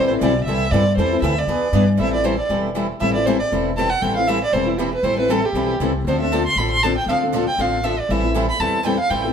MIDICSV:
0, 0, Header, 1, 5, 480
1, 0, Start_track
1, 0, Key_signature, 0, "minor"
1, 0, Tempo, 254130
1, 1834, Time_signature, 4, 2, 24, 8
1, 17621, End_track
2, 0, Start_track
2, 0, Title_t, "Violin"
2, 0, Program_c, 0, 40
2, 142, Note_on_c, 0, 72, 75
2, 246, Note_off_c, 0, 72, 0
2, 368, Note_on_c, 0, 74, 85
2, 827, Note_off_c, 0, 74, 0
2, 843, Note_on_c, 0, 76, 84
2, 1344, Note_on_c, 0, 74, 86
2, 1373, Note_off_c, 0, 76, 0
2, 1829, Note_off_c, 0, 74, 0
2, 1844, Note_on_c, 0, 72, 86
2, 2285, Note_off_c, 0, 72, 0
2, 2325, Note_on_c, 0, 76, 81
2, 2621, Note_on_c, 0, 74, 71
2, 2649, Note_off_c, 0, 76, 0
2, 3561, Note_off_c, 0, 74, 0
2, 3784, Note_on_c, 0, 76, 74
2, 4020, Note_off_c, 0, 76, 0
2, 4039, Note_on_c, 0, 74, 77
2, 4249, Note_on_c, 0, 72, 69
2, 4277, Note_off_c, 0, 74, 0
2, 4498, Note_off_c, 0, 72, 0
2, 4510, Note_on_c, 0, 74, 73
2, 4702, Note_off_c, 0, 74, 0
2, 5678, Note_on_c, 0, 76, 80
2, 5926, Note_off_c, 0, 76, 0
2, 5934, Note_on_c, 0, 74, 79
2, 6158, Note_on_c, 0, 72, 75
2, 6186, Note_off_c, 0, 74, 0
2, 6394, Note_off_c, 0, 72, 0
2, 6405, Note_on_c, 0, 74, 86
2, 6537, Note_off_c, 0, 74, 0
2, 7115, Note_on_c, 0, 81, 85
2, 7362, Note_on_c, 0, 78, 92
2, 7390, Note_off_c, 0, 81, 0
2, 7597, Note_on_c, 0, 79, 90
2, 7625, Note_off_c, 0, 78, 0
2, 7843, Note_off_c, 0, 79, 0
2, 7854, Note_on_c, 0, 77, 82
2, 8070, Note_on_c, 0, 76, 88
2, 8098, Note_off_c, 0, 77, 0
2, 8342, Note_off_c, 0, 76, 0
2, 8387, Note_on_c, 0, 74, 82
2, 8557, Note_on_c, 0, 72, 75
2, 8585, Note_off_c, 0, 74, 0
2, 8814, Note_on_c, 0, 64, 64
2, 8842, Note_off_c, 0, 72, 0
2, 9028, Note_on_c, 0, 67, 64
2, 9056, Note_off_c, 0, 64, 0
2, 9301, Note_off_c, 0, 67, 0
2, 9337, Note_on_c, 0, 71, 83
2, 9515, Note_on_c, 0, 72, 93
2, 9543, Note_off_c, 0, 71, 0
2, 9785, Note_off_c, 0, 72, 0
2, 9803, Note_on_c, 0, 71, 87
2, 10016, Note_on_c, 0, 69, 81
2, 10044, Note_off_c, 0, 71, 0
2, 10308, Note_on_c, 0, 67, 81
2, 10336, Note_off_c, 0, 69, 0
2, 10767, Note_off_c, 0, 67, 0
2, 11471, Note_on_c, 0, 72, 74
2, 11706, Note_off_c, 0, 72, 0
2, 11719, Note_on_c, 0, 76, 84
2, 11935, Note_on_c, 0, 81, 82
2, 11963, Note_off_c, 0, 76, 0
2, 12197, Note_off_c, 0, 81, 0
2, 12212, Note_on_c, 0, 84, 101
2, 12414, Note_on_c, 0, 83, 82
2, 12442, Note_off_c, 0, 84, 0
2, 12660, Note_off_c, 0, 83, 0
2, 12672, Note_on_c, 0, 84, 105
2, 12897, Note_on_c, 0, 81, 87
2, 12925, Note_off_c, 0, 84, 0
2, 13158, Note_off_c, 0, 81, 0
2, 13176, Note_on_c, 0, 79, 85
2, 13359, Note_off_c, 0, 79, 0
2, 13378, Note_on_c, 0, 77, 78
2, 13534, Note_off_c, 0, 77, 0
2, 14120, Note_on_c, 0, 79, 88
2, 14370, Note_on_c, 0, 77, 79
2, 14398, Note_off_c, 0, 79, 0
2, 14814, Note_on_c, 0, 76, 72
2, 14842, Note_off_c, 0, 77, 0
2, 15092, Note_on_c, 0, 74, 81
2, 15121, Note_off_c, 0, 76, 0
2, 15317, Note_on_c, 0, 76, 77
2, 15346, Note_off_c, 0, 74, 0
2, 15568, Note_off_c, 0, 76, 0
2, 16044, Note_on_c, 0, 83, 99
2, 16246, Note_on_c, 0, 81, 85
2, 16274, Note_off_c, 0, 83, 0
2, 16741, Note_on_c, 0, 79, 81
2, 16769, Note_off_c, 0, 81, 0
2, 16982, Note_off_c, 0, 79, 0
2, 16994, Note_on_c, 0, 77, 94
2, 17193, Note_on_c, 0, 79, 77
2, 17221, Note_off_c, 0, 77, 0
2, 17463, Note_off_c, 0, 79, 0
2, 17621, End_track
3, 0, Start_track
3, 0, Title_t, "Steel-string acoustic guitar"
3, 0, Program_c, 1, 25
3, 0, Note_on_c, 1, 52, 60
3, 0, Note_on_c, 1, 55, 65
3, 0, Note_on_c, 1, 60, 67
3, 0, Note_on_c, 1, 69, 74
3, 264, Note_off_c, 1, 55, 0
3, 268, Note_off_c, 1, 52, 0
3, 274, Note_off_c, 1, 60, 0
3, 274, Note_off_c, 1, 69, 0
3, 2820, Note_on_c, 1, 71, 67
3, 3148, Note_off_c, 1, 71, 0
3, 3287, Note_on_c, 1, 71, 89
3, 3471, Note_off_c, 1, 71, 0
3, 17621, End_track
4, 0, Start_track
4, 0, Title_t, "Steel-string acoustic guitar"
4, 0, Program_c, 2, 25
4, 0, Note_on_c, 2, 64, 71
4, 192, Note_off_c, 2, 64, 0
4, 207, Note_on_c, 2, 69, 53
4, 227, Note_on_c, 2, 64, 54
4, 247, Note_on_c, 2, 60, 50
4, 398, Note_off_c, 2, 69, 0
4, 408, Note_off_c, 2, 64, 0
4, 412, Note_off_c, 2, 60, 0
4, 418, Note_on_c, 2, 52, 81
4, 421, Note_on_c, 2, 55, 94
4, 435, Note_on_c, 2, 60, 93
4, 436, Note_on_c, 2, 64, 95
4, 448, Note_on_c, 2, 69, 94
4, 598, Note_off_c, 2, 52, 0
4, 599, Note_off_c, 2, 55, 0
4, 606, Note_off_c, 2, 60, 0
4, 607, Note_off_c, 2, 64, 0
4, 613, Note_off_c, 2, 69, 0
4, 892, Note_on_c, 2, 52, 61
4, 908, Note_on_c, 2, 64, 62
4, 909, Note_on_c, 2, 55, 64
4, 909, Note_on_c, 2, 60, 63
4, 919, Note_on_c, 2, 69, 68
4, 1225, Note_off_c, 2, 52, 0
4, 1233, Note_off_c, 2, 55, 0
4, 1233, Note_off_c, 2, 60, 0
4, 1233, Note_off_c, 2, 64, 0
4, 1238, Note_off_c, 2, 69, 0
4, 1359, Note_on_c, 2, 52, 74
4, 1371, Note_on_c, 2, 55, 88
4, 1378, Note_on_c, 2, 60, 94
4, 1394, Note_on_c, 2, 64, 80
4, 1394, Note_on_c, 2, 69, 85
4, 1548, Note_off_c, 2, 52, 0
4, 1554, Note_off_c, 2, 55, 0
4, 1558, Note_off_c, 2, 60, 0
4, 1566, Note_off_c, 2, 64, 0
4, 1566, Note_off_c, 2, 69, 0
4, 1836, Note_on_c, 2, 52, 64
4, 1844, Note_on_c, 2, 55, 69
4, 1848, Note_on_c, 2, 60, 63
4, 1854, Note_on_c, 2, 64, 71
4, 1854, Note_on_c, 2, 69, 71
4, 2094, Note_off_c, 2, 52, 0
4, 2094, Note_off_c, 2, 69, 0
4, 2098, Note_off_c, 2, 55, 0
4, 2099, Note_off_c, 2, 60, 0
4, 2103, Note_off_c, 2, 64, 0
4, 2117, Note_on_c, 2, 69, 58
4, 2126, Note_on_c, 2, 64, 47
4, 2154, Note_on_c, 2, 60, 43
4, 2299, Note_off_c, 2, 60, 0
4, 2305, Note_on_c, 2, 52, 86
4, 2308, Note_on_c, 2, 55, 82
4, 2312, Note_off_c, 2, 69, 0
4, 2316, Note_off_c, 2, 64, 0
4, 2322, Note_on_c, 2, 60, 88
4, 2331, Note_on_c, 2, 69, 98
4, 2335, Note_on_c, 2, 64, 89
4, 2501, Note_off_c, 2, 52, 0
4, 2502, Note_off_c, 2, 55, 0
4, 2509, Note_off_c, 2, 60, 0
4, 2514, Note_off_c, 2, 69, 0
4, 2516, Note_off_c, 2, 64, 0
4, 2796, Note_on_c, 2, 52, 56
4, 2801, Note_on_c, 2, 59, 59
4, 2808, Note_on_c, 2, 62, 60
4, 2823, Note_on_c, 2, 68, 62
4, 3136, Note_off_c, 2, 52, 0
4, 3139, Note_off_c, 2, 59, 0
4, 3142, Note_off_c, 2, 62, 0
4, 3149, Note_off_c, 2, 68, 0
4, 3285, Note_on_c, 2, 52, 73
4, 3288, Note_on_c, 2, 59, 76
4, 3299, Note_on_c, 2, 62, 90
4, 3305, Note_on_c, 2, 68, 90
4, 3470, Note_off_c, 2, 52, 0
4, 3472, Note_off_c, 2, 59, 0
4, 3478, Note_off_c, 2, 62, 0
4, 3480, Note_off_c, 2, 68, 0
4, 3767, Note_on_c, 2, 52, 61
4, 3789, Note_on_c, 2, 55, 61
4, 3789, Note_on_c, 2, 60, 69
4, 3796, Note_on_c, 2, 64, 67
4, 3806, Note_on_c, 2, 69, 63
4, 4006, Note_off_c, 2, 69, 0
4, 4019, Note_off_c, 2, 52, 0
4, 4020, Note_off_c, 2, 64, 0
4, 4028, Note_on_c, 2, 69, 50
4, 4029, Note_off_c, 2, 55, 0
4, 4029, Note_off_c, 2, 60, 0
4, 4042, Note_on_c, 2, 64, 46
4, 4069, Note_on_c, 2, 60, 41
4, 4222, Note_off_c, 2, 60, 0
4, 4227, Note_off_c, 2, 69, 0
4, 4228, Note_off_c, 2, 64, 0
4, 4230, Note_on_c, 2, 52, 79
4, 4235, Note_on_c, 2, 55, 86
4, 4245, Note_on_c, 2, 60, 94
4, 4249, Note_on_c, 2, 69, 83
4, 4250, Note_on_c, 2, 64, 89
4, 4423, Note_off_c, 2, 52, 0
4, 4426, Note_off_c, 2, 55, 0
4, 4430, Note_off_c, 2, 60, 0
4, 4432, Note_off_c, 2, 69, 0
4, 4433, Note_off_c, 2, 64, 0
4, 4719, Note_on_c, 2, 52, 57
4, 4727, Note_on_c, 2, 55, 62
4, 4731, Note_on_c, 2, 60, 64
4, 4746, Note_on_c, 2, 64, 60
4, 4746, Note_on_c, 2, 69, 61
4, 5057, Note_off_c, 2, 52, 0
4, 5061, Note_off_c, 2, 55, 0
4, 5063, Note_off_c, 2, 60, 0
4, 5071, Note_off_c, 2, 64, 0
4, 5071, Note_off_c, 2, 69, 0
4, 5188, Note_on_c, 2, 52, 81
4, 5197, Note_on_c, 2, 55, 82
4, 5199, Note_on_c, 2, 60, 80
4, 5207, Note_on_c, 2, 64, 81
4, 5221, Note_on_c, 2, 69, 83
4, 5382, Note_off_c, 2, 52, 0
4, 5386, Note_off_c, 2, 55, 0
4, 5387, Note_off_c, 2, 60, 0
4, 5391, Note_off_c, 2, 64, 0
4, 5398, Note_off_c, 2, 69, 0
4, 5686, Note_on_c, 2, 52, 66
4, 5699, Note_on_c, 2, 55, 68
4, 5703, Note_on_c, 2, 60, 67
4, 5712, Note_on_c, 2, 64, 68
4, 5720, Note_on_c, 2, 69, 64
4, 5935, Note_off_c, 2, 69, 0
4, 5938, Note_off_c, 2, 52, 0
4, 5944, Note_off_c, 2, 55, 0
4, 5946, Note_off_c, 2, 60, 0
4, 5951, Note_off_c, 2, 64, 0
4, 5958, Note_on_c, 2, 69, 59
4, 5976, Note_on_c, 2, 64, 50
4, 6006, Note_on_c, 2, 60, 49
4, 6152, Note_off_c, 2, 69, 0
4, 6155, Note_off_c, 2, 60, 0
4, 6161, Note_off_c, 2, 64, 0
4, 6169, Note_on_c, 2, 52, 85
4, 6171, Note_on_c, 2, 55, 84
4, 6178, Note_on_c, 2, 60, 95
4, 6186, Note_on_c, 2, 64, 95
4, 6194, Note_on_c, 2, 69, 90
4, 6353, Note_off_c, 2, 52, 0
4, 6354, Note_off_c, 2, 55, 0
4, 6357, Note_off_c, 2, 60, 0
4, 6361, Note_off_c, 2, 64, 0
4, 6365, Note_off_c, 2, 69, 0
4, 6621, Note_on_c, 2, 52, 56
4, 6638, Note_on_c, 2, 55, 64
4, 6643, Note_on_c, 2, 60, 63
4, 6647, Note_on_c, 2, 69, 63
4, 6649, Note_on_c, 2, 64, 64
4, 6969, Note_off_c, 2, 52, 0
4, 6977, Note_off_c, 2, 55, 0
4, 6980, Note_off_c, 2, 60, 0
4, 6982, Note_off_c, 2, 69, 0
4, 6983, Note_off_c, 2, 64, 0
4, 7123, Note_on_c, 2, 52, 77
4, 7132, Note_on_c, 2, 55, 85
4, 7138, Note_on_c, 2, 64, 90
4, 7139, Note_on_c, 2, 60, 88
4, 7142, Note_on_c, 2, 69, 80
4, 7310, Note_off_c, 2, 52, 0
4, 7314, Note_off_c, 2, 55, 0
4, 7317, Note_off_c, 2, 64, 0
4, 7318, Note_off_c, 2, 60, 0
4, 7319, Note_off_c, 2, 69, 0
4, 7586, Note_on_c, 2, 52, 65
4, 7599, Note_on_c, 2, 55, 59
4, 7600, Note_on_c, 2, 60, 68
4, 7605, Note_on_c, 2, 64, 65
4, 7608, Note_on_c, 2, 69, 70
4, 7849, Note_off_c, 2, 52, 0
4, 7855, Note_off_c, 2, 55, 0
4, 7856, Note_off_c, 2, 60, 0
4, 7856, Note_off_c, 2, 69, 0
4, 7858, Note_off_c, 2, 64, 0
4, 7878, Note_on_c, 2, 69, 54
4, 7902, Note_on_c, 2, 64, 50
4, 7921, Note_on_c, 2, 60, 43
4, 8056, Note_off_c, 2, 60, 0
4, 8068, Note_on_c, 2, 52, 82
4, 8069, Note_off_c, 2, 64, 0
4, 8073, Note_off_c, 2, 69, 0
4, 8078, Note_on_c, 2, 55, 87
4, 8078, Note_on_c, 2, 60, 90
4, 8092, Note_on_c, 2, 64, 87
4, 8104, Note_on_c, 2, 69, 103
4, 8263, Note_off_c, 2, 52, 0
4, 8268, Note_off_c, 2, 55, 0
4, 8268, Note_off_c, 2, 60, 0
4, 8274, Note_off_c, 2, 64, 0
4, 8280, Note_off_c, 2, 69, 0
4, 8569, Note_on_c, 2, 52, 57
4, 8576, Note_on_c, 2, 55, 56
4, 8588, Note_on_c, 2, 60, 65
4, 8599, Note_on_c, 2, 64, 65
4, 8604, Note_on_c, 2, 69, 65
4, 8904, Note_off_c, 2, 52, 0
4, 8907, Note_off_c, 2, 55, 0
4, 8913, Note_off_c, 2, 60, 0
4, 8919, Note_off_c, 2, 64, 0
4, 8921, Note_off_c, 2, 69, 0
4, 9046, Note_on_c, 2, 55, 81
4, 9048, Note_on_c, 2, 52, 81
4, 9055, Note_on_c, 2, 60, 82
4, 9060, Note_on_c, 2, 64, 93
4, 9066, Note_on_c, 2, 69, 83
4, 9232, Note_off_c, 2, 55, 0
4, 9233, Note_off_c, 2, 52, 0
4, 9236, Note_off_c, 2, 60, 0
4, 9239, Note_off_c, 2, 64, 0
4, 9242, Note_off_c, 2, 69, 0
4, 9524, Note_on_c, 2, 52, 65
4, 9540, Note_on_c, 2, 60, 69
4, 9543, Note_on_c, 2, 55, 63
4, 9548, Note_on_c, 2, 64, 73
4, 9556, Note_on_c, 2, 69, 74
4, 9752, Note_off_c, 2, 69, 0
4, 9775, Note_on_c, 2, 69, 56
4, 9778, Note_off_c, 2, 64, 0
4, 9779, Note_off_c, 2, 52, 0
4, 9787, Note_off_c, 2, 60, 0
4, 9788, Note_off_c, 2, 55, 0
4, 9801, Note_on_c, 2, 64, 50
4, 9814, Note_on_c, 2, 60, 48
4, 9976, Note_off_c, 2, 60, 0
4, 9977, Note_on_c, 2, 52, 82
4, 9978, Note_off_c, 2, 64, 0
4, 9982, Note_off_c, 2, 69, 0
4, 9992, Note_on_c, 2, 55, 87
4, 9998, Note_on_c, 2, 60, 90
4, 10000, Note_on_c, 2, 64, 93
4, 10010, Note_on_c, 2, 69, 91
4, 10178, Note_off_c, 2, 52, 0
4, 10186, Note_off_c, 2, 55, 0
4, 10189, Note_off_c, 2, 60, 0
4, 10190, Note_off_c, 2, 64, 0
4, 10195, Note_off_c, 2, 69, 0
4, 10469, Note_on_c, 2, 52, 59
4, 10474, Note_on_c, 2, 55, 57
4, 10485, Note_on_c, 2, 60, 64
4, 10495, Note_on_c, 2, 64, 65
4, 10499, Note_on_c, 2, 69, 66
4, 10815, Note_off_c, 2, 52, 0
4, 10817, Note_off_c, 2, 55, 0
4, 10823, Note_off_c, 2, 60, 0
4, 10828, Note_off_c, 2, 64, 0
4, 10830, Note_off_c, 2, 69, 0
4, 10980, Note_on_c, 2, 52, 85
4, 10983, Note_on_c, 2, 60, 86
4, 10988, Note_on_c, 2, 64, 84
4, 10991, Note_on_c, 2, 55, 80
4, 11005, Note_on_c, 2, 69, 91
4, 11161, Note_off_c, 2, 52, 0
4, 11162, Note_off_c, 2, 60, 0
4, 11164, Note_off_c, 2, 64, 0
4, 11166, Note_off_c, 2, 55, 0
4, 11173, Note_off_c, 2, 69, 0
4, 11469, Note_on_c, 2, 50, 63
4, 11475, Note_on_c, 2, 53, 68
4, 11475, Note_on_c, 2, 69, 68
4, 11477, Note_on_c, 2, 60, 64
4, 11480, Note_on_c, 2, 62, 73
4, 11711, Note_off_c, 2, 69, 0
4, 11712, Note_off_c, 2, 50, 0
4, 11715, Note_off_c, 2, 53, 0
4, 11716, Note_off_c, 2, 60, 0
4, 11718, Note_off_c, 2, 62, 0
4, 11734, Note_on_c, 2, 69, 51
4, 11767, Note_on_c, 2, 62, 47
4, 11779, Note_on_c, 2, 60, 42
4, 11923, Note_off_c, 2, 69, 0
4, 11938, Note_off_c, 2, 60, 0
4, 11938, Note_on_c, 2, 50, 88
4, 11939, Note_off_c, 2, 62, 0
4, 11954, Note_on_c, 2, 53, 81
4, 11961, Note_on_c, 2, 60, 87
4, 11962, Note_on_c, 2, 69, 104
4, 11965, Note_on_c, 2, 62, 91
4, 12120, Note_off_c, 2, 50, 0
4, 12128, Note_off_c, 2, 53, 0
4, 12131, Note_off_c, 2, 60, 0
4, 12132, Note_off_c, 2, 69, 0
4, 12133, Note_off_c, 2, 62, 0
4, 12430, Note_on_c, 2, 50, 55
4, 12447, Note_on_c, 2, 53, 64
4, 12450, Note_on_c, 2, 60, 63
4, 12463, Note_on_c, 2, 69, 68
4, 12464, Note_on_c, 2, 62, 63
4, 12756, Note_off_c, 2, 50, 0
4, 12765, Note_off_c, 2, 53, 0
4, 12767, Note_off_c, 2, 60, 0
4, 12773, Note_off_c, 2, 69, 0
4, 12774, Note_off_c, 2, 62, 0
4, 12901, Note_on_c, 2, 50, 85
4, 12915, Note_on_c, 2, 53, 83
4, 12921, Note_on_c, 2, 60, 90
4, 12925, Note_on_c, 2, 69, 92
4, 12926, Note_on_c, 2, 62, 90
4, 13082, Note_off_c, 2, 50, 0
4, 13089, Note_off_c, 2, 53, 0
4, 13092, Note_off_c, 2, 60, 0
4, 13094, Note_off_c, 2, 62, 0
4, 13094, Note_off_c, 2, 69, 0
4, 13396, Note_on_c, 2, 50, 64
4, 13404, Note_on_c, 2, 53, 64
4, 13409, Note_on_c, 2, 60, 68
4, 13412, Note_on_c, 2, 62, 77
4, 13419, Note_on_c, 2, 69, 69
4, 13637, Note_off_c, 2, 50, 0
4, 13638, Note_off_c, 2, 69, 0
4, 13641, Note_off_c, 2, 53, 0
4, 13643, Note_off_c, 2, 60, 0
4, 13645, Note_off_c, 2, 62, 0
4, 13661, Note_on_c, 2, 69, 53
4, 13688, Note_on_c, 2, 62, 48
4, 13700, Note_on_c, 2, 60, 46
4, 13847, Note_off_c, 2, 69, 0
4, 13861, Note_off_c, 2, 62, 0
4, 13866, Note_off_c, 2, 60, 0
4, 13878, Note_on_c, 2, 50, 83
4, 13890, Note_on_c, 2, 60, 96
4, 13895, Note_on_c, 2, 53, 94
4, 13899, Note_on_c, 2, 69, 107
4, 13907, Note_on_c, 2, 62, 102
4, 14051, Note_off_c, 2, 50, 0
4, 14057, Note_off_c, 2, 60, 0
4, 14059, Note_off_c, 2, 53, 0
4, 14061, Note_off_c, 2, 69, 0
4, 14065, Note_off_c, 2, 62, 0
4, 14337, Note_on_c, 2, 50, 57
4, 14341, Note_on_c, 2, 53, 66
4, 14347, Note_on_c, 2, 60, 69
4, 14358, Note_on_c, 2, 62, 61
4, 14358, Note_on_c, 2, 69, 69
4, 14670, Note_off_c, 2, 50, 0
4, 14672, Note_off_c, 2, 53, 0
4, 14675, Note_off_c, 2, 60, 0
4, 14680, Note_off_c, 2, 62, 0
4, 14681, Note_off_c, 2, 69, 0
4, 14819, Note_on_c, 2, 53, 79
4, 14820, Note_on_c, 2, 50, 90
4, 14827, Note_on_c, 2, 60, 89
4, 14832, Note_on_c, 2, 62, 92
4, 14839, Note_on_c, 2, 69, 87
4, 15001, Note_off_c, 2, 50, 0
4, 15001, Note_off_c, 2, 53, 0
4, 15005, Note_off_c, 2, 60, 0
4, 15008, Note_off_c, 2, 62, 0
4, 15011, Note_off_c, 2, 69, 0
4, 15305, Note_on_c, 2, 52, 65
4, 15307, Note_on_c, 2, 55, 75
4, 15312, Note_on_c, 2, 60, 75
4, 15318, Note_on_c, 2, 64, 76
4, 15330, Note_on_c, 2, 69, 73
4, 15542, Note_off_c, 2, 69, 0
4, 15551, Note_off_c, 2, 52, 0
4, 15552, Note_off_c, 2, 55, 0
4, 15554, Note_off_c, 2, 60, 0
4, 15557, Note_off_c, 2, 64, 0
4, 15565, Note_on_c, 2, 69, 56
4, 15579, Note_on_c, 2, 64, 51
4, 15606, Note_on_c, 2, 60, 48
4, 15758, Note_off_c, 2, 69, 0
4, 15765, Note_off_c, 2, 64, 0
4, 15766, Note_off_c, 2, 60, 0
4, 15772, Note_on_c, 2, 52, 83
4, 15777, Note_on_c, 2, 55, 94
4, 15785, Note_on_c, 2, 69, 101
4, 15789, Note_on_c, 2, 60, 91
4, 15798, Note_on_c, 2, 64, 103
4, 15957, Note_off_c, 2, 52, 0
4, 15959, Note_off_c, 2, 55, 0
4, 15963, Note_off_c, 2, 69, 0
4, 15965, Note_off_c, 2, 60, 0
4, 15970, Note_off_c, 2, 64, 0
4, 16258, Note_on_c, 2, 52, 60
4, 16263, Note_on_c, 2, 55, 64
4, 16263, Note_on_c, 2, 60, 60
4, 16279, Note_on_c, 2, 64, 67
4, 16283, Note_on_c, 2, 69, 66
4, 16589, Note_off_c, 2, 52, 0
4, 16591, Note_off_c, 2, 55, 0
4, 16592, Note_off_c, 2, 60, 0
4, 16599, Note_off_c, 2, 64, 0
4, 16602, Note_off_c, 2, 69, 0
4, 16733, Note_on_c, 2, 52, 81
4, 16737, Note_on_c, 2, 55, 76
4, 16742, Note_on_c, 2, 64, 93
4, 16750, Note_on_c, 2, 60, 80
4, 16756, Note_on_c, 2, 69, 86
4, 16916, Note_off_c, 2, 52, 0
4, 16918, Note_off_c, 2, 55, 0
4, 16921, Note_off_c, 2, 64, 0
4, 16925, Note_off_c, 2, 60, 0
4, 16928, Note_off_c, 2, 69, 0
4, 17192, Note_on_c, 2, 55, 67
4, 17201, Note_on_c, 2, 52, 67
4, 17206, Note_on_c, 2, 60, 67
4, 17218, Note_on_c, 2, 64, 73
4, 17219, Note_on_c, 2, 69, 74
4, 17445, Note_off_c, 2, 69, 0
4, 17452, Note_off_c, 2, 55, 0
4, 17456, Note_off_c, 2, 52, 0
4, 17459, Note_off_c, 2, 60, 0
4, 17465, Note_off_c, 2, 64, 0
4, 17467, Note_on_c, 2, 69, 55
4, 17490, Note_on_c, 2, 64, 49
4, 17516, Note_on_c, 2, 60, 51
4, 17621, Note_off_c, 2, 60, 0
4, 17621, Note_off_c, 2, 64, 0
4, 17621, Note_off_c, 2, 69, 0
4, 17621, End_track
5, 0, Start_track
5, 0, Title_t, "Upright bass"
5, 0, Program_c, 3, 32
5, 0, Note_on_c, 3, 33, 75
5, 385, Note_off_c, 3, 33, 0
5, 400, Note_on_c, 3, 35, 92
5, 855, Note_off_c, 3, 35, 0
5, 867, Note_on_c, 3, 36, 72
5, 1336, Note_off_c, 3, 36, 0
5, 1349, Note_on_c, 3, 43, 90
5, 1817, Note_off_c, 3, 43, 0
5, 1833, Note_on_c, 3, 40, 78
5, 2291, Note_off_c, 3, 40, 0
5, 2302, Note_on_c, 3, 38, 89
5, 2768, Note_off_c, 3, 38, 0
5, 2780, Note_on_c, 3, 40, 72
5, 3251, Note_off_c, 3, 40, 0
5, 3259, Note_on_c, 3, 43, 90
5, 3731, Note_off_c, 3, 43, 0
5, 3756, Note_on_c, 3, 33, 78
5, 4522, Note_off_c, 3, 33, 0
5, 4710, Note_on_c, 3, 28, 69
5, 5479, Note_off_c, 3, 28, 0
5, 5688, Note_on_c, 3, 33, 77
5, 6450, Note_off_c, 3, 33, 0
5, 6651, Note_on_c, 3, 28, 72
5, 7412, Note_off_c, 3, 28, 0
5, 7590, Note_on_c, 3, 33, 79
5, 8360, Note_off_c, 3, 33, 0
5, 8548, Note_on_c, 3, 28, 72
5, 9319, Note_off_c, 3, 28, 0
5, 9501, Note_on_c, 3, 33, 81
5, 10275, Note_off_c, 3, 33, 0
5, 10435, Note_on_c, 3, 35, 72
5, 10861, Note_off_c, 3, 35, 0
5, 10950, Note_on_c, 3, 36, 79
5, 11361, Note_off_c, 3, 36, 0
5, 11421, Note_on_c, 3, 38, 83
5, 12196, Note_off_c, 3, 38, 0
5, 12386, Note_on_c, 3, 33, 71
5, 13160, Note_off_c, 3, 33, 0
5, 13339, Note_on_c, 3, 38, 81
5, 14115, Note_off_c, 3, 38, 0
5, 14319, Note_on_c, 3, 33, 75
5, 15087, Note_off_c, 3, 33, 0
5, 15279, Note_on_c, 3, 33, 85
5, 16046, Note_off_c, 3, 33, 0
5, 16230, Note_on_c, 3, 40, 78
5, 17000, Note_off_c, 3, 40, 0
5, 17195, Note_on_c, 3, 33, 83
5, 17621, Note_off_c, 3, 33, 0
5, 17621, End_track
0, 0, End_of_file